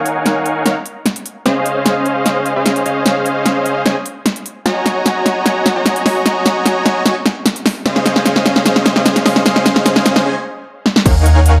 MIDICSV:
0, 0, Header, 1, 4, 480
1, 0, Start_track
1, 0, Key_signature, -5, "major"
1, 0, Tempo, 400000
1, 1747, Time_signature, 4, 2, 24, 8
1, 13920, End_track
2, 0, Start_track
2, 0, Title_t, "Supersaw synth"
2, 0, Program_c, 0, 81
2, 0, Note_on_c, 0, 63, 94
2, 0, Note_on_c, 0, 70, 87
2, 0, Note_on_c, 0, 73, 83
2, 0, Note_on_c, 0, 77, 86
2, 0, Note_on_c, 0, 78, 89
2, 0, Note_on_c, 0, 80, 104
2, 760, Note_off_c, 0, 63, 0
2, 760, Note_off_c, 0, 70, 0
2, 760, Note_off_c, 0, 73, 0
2, 760, Note_off_c, 0, 77, 0
2, 760, Note_off_c, 0, 78, 0
2, 760, Note_off_c, 0, 80, 0
2, 787, Note_on_c, 0, 70, 75
2, 788, Note_on_c, 0, 63, 84
2, 788, Note_on_c, 0, 73, 73
2, 788, Note_on_c, 0, 77, 74
2, 788, Note_on_c, 0, 78, 76
2, 788, Note_on_c, 0, 82, 91
2, 902, Note_off_c, 0, 63, 0
2, 902, Note_off_c, 0, 70, 0
2, 902, Note_off_c, 0, 73, 0
2, 902, Note_off_c, 0, 77, 0
2, 902, Note_off_c, 0, 78, 0
2, 902, Note_off_c, 0, 82, 0
2, 1748, Note_on_c, 0, 61, 100
2, 1749, Note_on_c, 0, 68, 93
2, 1749, Note_on_c, 0, 72, 92
2, 1749, Note_on_c, 0, 75, 94
2, 1749, Note_on_c, 0, 77, 110
2, 3043, Note_off_c, 0, 61, 0
2, 3043, Note_off_c, 0, 68, 0
2, 3043, Note_off_c, 0, 72, 0
2, 3043, Note_off_c, 0, 75, 0
2, 3043, Note_off_c, 0, 77, 0
2, 3073, Note_on_c, 0, 61, 79
2, 3073, Note_on_c, 0, 68, 76
2, 3073, Note_on_c, 0, 72, 75
2, 3073, Note_on_c, 0, 75, 73
2, 3073, Note_on_c, 0, 77, 91
2, 3400, Note_off_c, 0, 61, 0
2, 3400, Note_off_c, 0, 68, 0
2, 3400, Note_off_c, 0, 72, 0
2, 3400, Note_off_c, 0, 75, 0
2, 3400, Note_off_c, 0, 77, 0
2, 3428, Note_on_c, 0, 61, 89
2, 3428, Note_on_c, 0, 68, 83
2, 3428, Note_on_c, 0, 72, 81
2, 3428, Note_on_c, 0, 75, 85
2, 3428, Note_on_c, 0, 77, 100
2, 3640, Note_off_c, 0, 61, 0
2, 3640, Note_off_c, 0, 68, 0
2, 3640, Note_off_c, 0, 72, 0
2, 3640, Note_off_c, 0, 75, 0
2, 3640, Note_off_c, 0, 77, 0
2, 3668, Note_on_c, 0, 61, 93
2, 3668, Note_on_c, 0, 68, 87
2, 3668, Note_on_c, 0, 72, 86
2, 3668, Note_on_c, 0, 75, 84
2, 3668, Note_on_c, 0, 77, 106
2, 4600, Note_off_c, 0, 61, 0
2, 4600, Note_off_c, 0, 68, 0
2, 4600, Note_off_c, 0, 72, 0
2, 4600, Note_off_c, 0, 75, 0
2, 4600, Note_off_c, 0, 77, 0
2, 4627, Note_on_c, 0, 68, 77
2, 4627, Note_on_c, 0, 75, 77
2, 4628, Note_on_c, 0, 61, 82
2, 4628, Note_on_c, 0, 72, 78
2, 4628, Note_on_c, 0, 80, 93
2, 4742, Note_off_c, 0, 61, 0
2, 4742, Note_off_c, 0, 68, 0
2, 4742, Note_off_c, 0, 72, 0
2, 4742, Note_off_c, 0, 75, 0
2, 4742, Note_off_c, 0, 80, 0
2, 5587, Note_on_c, 0, 66, 101
2, 5587, Note_on_c, 0, 73, 92
2, 5587, Note_on_c, 0, 75, 93
2, 5587, Note_on_c, 0, 80, 91
2, 5587, Note_on_c, 0, 82, 114
2, 6882, Note_off_c, 0, 66, 0
2, 6882, Note_off_c, 0, 73, 0
2, 6882, Note_off_c, 0, 75, 0
2, 6882, Note_off_c, 0, 80, 0
2, 6882, Note_off_c, 0, 82, 0
2, 6911, Note_on_c, 0, 80, 75
2, 6912, Note_on_c, 0, 66, 82
2, 6912, Note_on_c, 0, 73, 78
2, 6912, Note_on_c, 0, 75, 77
2, 6912, Note_on_c, 0, 82, 87
2, 7239, Note_off_c, 0, 80, 0
2, 7240, Note_off_c, 0, 66, 0
2, 7240, Note_off_c, 0, 73, 0
2, 7240, Note_off_c, 0, 75, 0
2, 7240, Note_off_c, 0, 82, 0
2, 7268, Note_on_c, 0, 66, 94
2, 7268, Note_on_c, 0, 73, 86
2, 7268, Note_on_c, 0, 75, 84
2, 7268, Note_on_c, 0, 80, 84
2, 7268, Note_on_c, 0, 82, 99
2, 7480, Note_off_c, 0, 66, 0
2, 7480, Note_off_c, 0, 73, 0
2, 7480, Note_off_c, 0, 75, 0
2, 7480, Note_off_c, 0, 80, 0
2, 7480, Note_off_c, 0, 82, 0
2, 7508, Note_on_c, 0, 66, 96
2, 7508, Note_on_c, 0, 73, 86
2, 7508, Note_on_c, 0, 75, 89
2, 7508, Note_on_c, 0, 80, 86
2, 7509, Note_on_c, 0, 82, 107
2, 8440, Note_off_c, 0, 66, 0
2, 8440, Note_off_c, 0, 73, 0
2, 8440, Note_off_c, 0, 75, 0
2, 8440, Note_off_c, 0, 80, 0
2, 8440, Note_off_c, 0, 82, 0
2, 8468, Note_on_c, 0, 66, 82
2, 8468, Note_on_c, 0, 73, 78
2, 8468, Note_on_c, 0, 75, 76
2, 8468, Note_on_c, 0, 80, 76
2, 8468, Note_on_c, 0, 85, 93
2, 8582, Note_off_c, 0, 75, 0
2, 8582, Note_off_c, 0, 80, 0
2, 8583, Note_off_c, 0, 66, 0
2, 8583, Note_off_c, 0, 73, 0
2, 8583, Note_off_c, 0, 85, 0
2, 9427, Note_on_c, 0, 61, 101
2, 9427, Note_on_c, 0, 68, 93
2, 9427, Note_on_c, 0, 72, 92
2, 9427, Note_on_c, 0, 75, 94
2, 9427, Note_on_c, 0, 77, 112
2, 10722, Note_off_c, 0, 61, 0
2, 10722, Note_off_c, 0, 68, 0
2, 10722, Note_off_c, 0, 72, 0
2, 10722, Note_off_c, 0, 75, 0
2, 10722, Note_off_c, 0, 77, 0
2, 10752, Note_on_c, 0, 61, 83
2, 10752, Note_on_c, 0, 68, 75
2, 10752, Note_on_c, 0, 72, 74
2, 10752, Note_on_c, 0, 75, 77
2, 10752, Note_on_c, 0, 77, 90
2, 11080, Note_off_c, 0, 61, 0
2, 11080, Note_off_c, 0, 68, 0
2, 11080, Note_off_c, 0, 72, 0
2, 11080, Note_off_c, 0, 75, 0
2, 11080, Note_off_c, 0, 77, 0
2, 11108, Note_on_c, 0, 61, 92
2, 11108, Note_on_c, 0, 68, 83
2, 11108, Note_on_c, 0, 72, 83
2, 11108, Note_on_c, 0, 75, 85
2, 11108, Note_on_c, 0, 77, 101
2, 11320, Note_off_c, 0, 61, 0
2, 11320, Note_off_c, 0, 68, 0
2, 11320, Note_off_c, 0, 72, 0
2, 11320, Note_off_c, 0, 75, 0
2, 11320, Note_off_c, 0, 77, 0
2, 11348, Note_on_c, 0, 61, 95
2, 11348, Note_on_c, 0, 68, 89
2, 11348, Note_on_c, 0, 72, 89
2, 11348, Note_on_c, 0, 75, 88
2, 11348, Note_on_c, 0, 77, 107
2, 12280, Note_off_c, 0, 61, 0
2, 12280, Note_off_c, 0, 68, 0
2, 12280, Note_off_c, 0, 72, 0
2, 12280, Note_off_c, 0, 75, 0
2, 12280, Note_off_c, 0, 77, 0
2, 12307, Note_on_c, 0, 61, 84
2, 12307, Note_on_c, 0, 68, 78
2, 12307, Note_on_c, 0, 72, 74
2, 12307, Note_on_c, 0, 75, 75
2, 12308, Note_on_c, 0, 80, 95
2, 12422, Note_off_c, 0, 61, 0
2, 12422, Note_off_c, 0, 68, 0
2, 12422, Note_off_c, 0, 72, 0
2, 12422, Note_off_c, 0, 75, 0
2, 12422, Note_off_c, 0, 80, 0
2, 13268, Note_on_c, 0, 63, 103
2, 13268, Note_on_c, 0, 70, 94
2, 13268, Note_on_c, 0, 73, 91
2, 13268, Note_on_c, 0, 77, 94
2, 13268, Note_on_c, 0, 78, 93
2, 13268, Note_on_c, 0, 80, 112
2, 13920, Note_off_c, 0, 63, 0
2, 13920, Note_off_c, 0, 70, 0
2, 13920, Note_off_c, 0, 73, 0
2, 13920, Note_off_c, 0, 77, 0
2, 13920, Note_off_c, 0, 78, 0
2, 13920, Note_off_c, 0, 80, 0
2, 13920, End_track
3, 0, Start_track
3, 0, Title_t, "Sub bass"
3, 0, Program_c, 1, 38
3, 13268, Note_on_c, 1, 39, 96
3, 13920, Note_off_c, 1, 39, 0
3, 13920, End_track
4, 0, Start_track
4, 0, Title_t, "Drums"
4, 68, Note_on_c, 9, 42, 65
4, 188, Note_off_c, 9, 42, 0
4, 308, Note_on_c, 9, 38, 53
4, 308, Note_on_c, 9, 42, 79
4, 428, Note_off_c, 9, 38, 0
4, 428, Note_off_c, 9, 42, 0
4, 548, Note_on_c, 9, 42, 65
4, 668, Note_off_c, 9, 42, 0
4, 788, Note_on_c, 9, 38, 55
4, 788, Note_on_c, 9, 42, 77
4, 908, Note_off_c, 9, 38, 0
4, 908, Note_off_c, 9, 42, 0
4, 1028, Note_on_c, 9, 42, 67
4, 1148, Note_off_c, 9, 42, 0
4, 1268, Note_on_c, 9, 38, 56
4, 1268, Note_on_c, 9, 42, 79
4, 1388, Note_off_c, 9, 38, 0
4, 1388, Note_off_c, 9, 42, 0
4, 1392, Note_on_c, 9, 42, 64
4, 1508, Note_off_c, 9, 42, 0
4, 1508, Note_on_c, 9, 42, 68
4, 1628, Note_off_c, 9, 42, 0
4, 1748, Note_on_c, 9, 38, 56
4, 1748, Note_on_c, 9, 42, 74
4, 1868, Note_off_c, 9, 38, 0
4, 1868, Note_off_c, 9, 42, 0
4, 1988, Note_on_c, 9, 42, 64
4, 2108, Note_off_c, 9, 42, 0
4, 2227, Note_on_c, 9, 38, 62
4, 2227, Note_on_c, 9, 42, 76
4, 2347, Note_off_c, 9, 38, 0
4, 2347, Note_off_c, 9, 42, 0
4, 2468, Note_on_c, 9, 42, 62
4, 2588, Note_off_c, 9, 42, 0
4, 2708, Note_on_c, 9, 38, 62
4, 2708, Note_on_c, 9, 42, 76
4, 2828, Note_off_c, 9, 38, 0
4, 2828, Note_off_c, 9, 42, 0
4, 2948, Note_on_c, 9, 42, 62
4, 3068, Note_off_c, 9, 42, 0
4, 3188, Note_on_c, 9, 38, 66
4, 3188, Note_on_c, 9, 42, 77
4, 3308, Note_off_c, 9, 38, 0
4, 3308, Note_off_c, 9, 42, 0
4, 3312, Note_on_c, 9, 42, 61
4, 3428, Note_off_c, 9, 42, 0
4, 3428, Note_on_c, 9, 42, 63
4, 3548, Note_off_c, 9, 42, 0
4, 3668, Note_on_c, 9, 38, 66
4, 3668, Note_on_c, 9, 42, 74
4, 3788, Note_off_c, 9, 38, 0
4, 3788, Note_off_c, 9, 42, 0
4, 3908, Note_on_c, 9, 42, 61
4, 4028, Note_off_c, 9, 42, 0
4, 4147, Note_on_c, 9, 38, 65
4, 4147, Note_on_c, 9, 42, 73
4, 4267, Note_off_c, 9, 38, 0
4, 4267, Note_off_c, 9, 42, 0
4, 4387, Note_on_c, 9, 42, 59
4, 4507, Note_off_c, 9, 42, 0
4, 4628, Note_on_c, 9, 38, 69
4, 4628, Note_on_c, 9, 42, 76
4, 4748, Note_off_c, 9, 38, 0
4, 4748, Note_off_c, 9, 42, 0
4, 4868, Note_on_c, 9, 42, 62
4, 4988, Note_off_c, 9, 42, 0
4, 5108, Note_on_c, 9, 38, 70
4, 5108, Note_on_c, 9, 42, 72
4, 5228, Note_off_c, 9, 38, 0
4, 5228, Note_off_c, 9, 42, 0
4, 5232, Note_on_c, 9, 42, 59
4, 5348, Note_off_c, 9, 42, 0
4, 5348, Note_on_c, 9, 42, 65
4, 5468, Note_off_c, 9, 42, 0
4, 5588, Note_on_c, 9, 38, 71
4, 5588, Note_on_c, 9, 42, 75
4, 5708, Note_off_c, 9, 38, 0
4, 5708, Note_off_c, 9, 42, 0
4, 5828, Note_on_c, 9, 38, 75
4, 5828, Note_on_c, 9, 42, 62
4, 5948, Note_off_c, 9, 38, 0
4, 5948, Note_off_c, 9, 42, 0
4, 6068, Note_on_c, 9, 38, 74
4, 6068, Note_on_c, 9, 42, 77
4, 6188, Note_off_c, 9, 38, 0
4, 6188, Note_off_c, 9, 42, 0
4, 6309, Note_on_c, 9, 38, 75
4, 6309, Note_on_c, 9, 42, 63
4, 6429, Note_off_c, 9, 38, 0
4, 6429, Note_off_c, 9, 42, 0
4, 6548, Note_on_c, 9, 38, 78
4, 6548, Note_on_c, 9, 42, 76
4, 6668, Note_off_c, 9, 38, 0
4, 6668, Note_off_c, 9, 42, 0
4, 6789, Note_on_c, 9, 38, 80
4, 6789, Note_on_c, 9, 42, 64
4, 6909, Note_off_c, 9, 38, 0
4, 6909, Note_off_c, 9, 42, 0
4, 7028, Note_on_c, 9, 38, 81
4, 7028, Note_on_c, 9, 42, 77
4, 7148, Note_off_c, 9, 38, 0
4, 7148, Note_off_c, 9, 42, 0
4, 7153, Note_on_c, 9, 42, 61
4, 7268, Note_on_c, 9, 38, 81
4, 7268, Note_on_c, 9, 46, 94
4, 7273, Note_off_c, 9, 42, 0
4, 7388, Note_off_c, 9, 38, 0
4, 7388, Note_off_c, 9, 46, 0
4, 7508, Note_on_c, 9, 38, 80
4, 7508, Note_on_c, 9, 42, 77
4, 7628, Note_off_c, 9, 38, 0
4, 7628, Note_off_c, 9, 42, 0
4, 7748, Note_on_c, 9, 38, 81
4, 7748, Note_on_c, 9, 42, 63
4, 7868, Note_off_c, 9, 38, 0
4, 7868, Note_off_c, 9, 42, 0
4, 7987, Note_on_c, 9, 38, 83
4, 7987, Note_on_c, 9, 42, 81
4, 8107, Note_off_c, 9, 38, 0
4, 8107, Note_off_c, 9, 42, 0
4, 8227, Note_on_c, 9, 38, 86
4, 8227, Note_on_c, 9, 42, 63
4, 8347, Note_off_c, 9, 38, 0
4, 8347, Note_off_c, 9, 42, 0
4, 8467, Note_on_c, 9, 38, 88
4, 8467, Note_on_c, 9, 42, 78
4, 8587, Note_off_c, 9, 38, 0
4, 8587, Note_off_c, 9, 42, 0
4, 8707, Note_on_c, 9, 38, 88
4, 8707, Note_on_c, 9, 42, 67
4, 8827, Note_off_c, 9, 38, 0
4, 8827, Note_off_c, 9, 42, 0
4, 8947, Note_on_c, 9, 38, 90
4, 8947, Note_on_c, 9, 42, 81
4, 9067, Note_off_c, 9, 38, 0
4, 9067, Note_off_c, 9, 42, 0
4, 9072, Note_on_c, 9, 42, 62
4, 9188, Note_on_c, 9, 38, 89
4, 9188, Note_on_c, 9, 46, 94
4, 9192, Note_off_c, 9, 42, 0
4, 9308, Note_off_c, 9, 38, 0
4, 9308, Note_off_c, 9, 46, 0
4, 9428, Note_on_c, 9, 38, 90
4, 9428, Note_on_c, 9, 42, 81
4, 9548, Note_off_c, 9, 38, 0
4, 9548, Note_off_c, 9, 42, 0
4, 9552, Note_on_c, 9, 38, 82
4, 9668, Note_off_c, 9, 38, 0
4, 9668, Note_on_c, 9, 38, 94
4, 9668, Note_on_c, 9, 42, 70
4, 9788, Note_off_c, 9, 38, 0
4, 9788, Note_off_c, 9, 42, 0
4, 9792, Note_on_c, 9, 38, 82
4, 9907, Note_off_c, 9, 38, 0
4, 9907, Note_on_c, 9, 38, 95
4, 9907, Note_on_c, 9, 42, 84
4, 10027, Note_off_c, 9, 38, 0
4, 10027, Note_off_c, 9, 42, 0
4, 10032, Note_on_c, 9, 38, 84
4, 10148, Note_off_c, 9, 38, 0
4, 10148, Note_on_c, 9, 38, 92
4, 10148, Note_on_c, 9, 42, 66
4, 10268, Note_off_c, 9, 38, 0
4, 10268, Note_off_c, 9, 42, 0
4, 10272, Note_on_c, 9, 38, 88
4, 10387, Note_off_c, 9, 38, 0
4, 10387, Note_on_c, 9, 38, 99
4, 10387, Note_on_c, 9, 42, 84
4, 10507, Note_off_c, 9, 38, 0
4, 10507, Note_off_c, 9, 42, 0
4, 10512, Note_on_c, 9, 38, 87
4, 10628, Note_off_c, 9, 38, 0
4, 10628, Note_on_c, 9, 38, 98
4, 10628, Note_on_c, 9, 42, 68
4, 10748, Note_off_c, 9, 38, 0
4, 10748, Note_off_c, 9, 42, 0
4, 10752, Note_on_c, 9, 38, 90
4, 10868, Note_off_c, 9, 38, 0
4, 10868, Note_on_c, 9, 38, 102
4, 10868, Note_on_c, 9, 42, 84
4, 10988, Note_off_c, 9, 38, 0
4, 10988, Note_off_c, 9, 42, 0
4, 10992, Note_on_c, 9, 38, 91
4, 10992, Note_on_c, 9, 42, 64
4, 11108, Note_off_c, 9, 38, 0
4, 11108, Note_on_c, 9, 38, 98
4, 11108, Note_on_c, 9, 46, 97
4, 11112, Note_off_c, 9, 42, 0
4, 11228, Note_off_c, 9, 38, 0
4, 11228, Note_off_c, 9, 46, 0
4, 11233, Note_on_c, 9, 38, 90
4, 11348, Note_off_c, 9, 38, 0
4, 11348, Note_on_c, 9, 38, 102
4, 11348, Note_on_c, 9, 42, 83
4, 11468, Note_off_c, 9, 38, 0
4, 11468, Note_off_c, 9, 42, 0
4, 11472, Note_on_c, 9, 38, 91
4, 11588, Note_off_c, 9, 38, 0
4, 11588, Note_on_c, 9, 38, 101
4, 11588, Note_on_c, 9, 42, 71
4, 11708, Note_off_c, 9, 38, 0
4, 11708, Note_off_c, 9, 42, 0
4, 11712, Note_on_c, 9, 38, 92
4, 11828, Note_off_c, 9, 38, 0
4, 11828, Note_on_c, 9, 38, 101
4, 11828, Note_on_c, 9, 42, 83
4, 11948, Note_off_c, 9, 38, 0
4, 11948, Note_off_c, 9, 42, 0
4, 11952, Note_on_c, 9, 38, 97
4, 12068, Note_off_c, 9, 38, 0
4, 12068, Note_on_c, 9, 38, 105
4, 12068, Note_on_c, 9, 42, 72
4, 12188, Note_off_c, 9, 38, 0
4, 12188, Note_off_c, 9, 42, 0
4, 12192, Note_on_c, 9, 38, 97
4, 12312, Note_off_c, 9, 38, 0
4, 13028, Note_on_c, 9, 38, 62
4, 13148, Note_off_c, 9, 38, 0
4, 13153, Note_on_c, 9, 38, 77
4, 13268, Note_on_c, 9, 36, 118
4, 13268, Note_on_c, 9, 42, 82
4, 13268, Note_on_c, 9, 49, 109
4, 13273, Note_off_c, 9, 38, 0
4, 13388, Note_off_c, 9, 36, 0
4, 13388, Note_off_c, 9, 42, 0
4, 13388, Note_off_c, 9, 49, 0
4, 13509, Note_on_c, 9, 42, 67
4, 13629, Note_off_c, 9, 42, 0
4, 13748, Note_on_c, 9, 42, 85
4, 13868, Note_off_c, 9, 42, 0
4, 13920, End_track
0, 0, End_of_file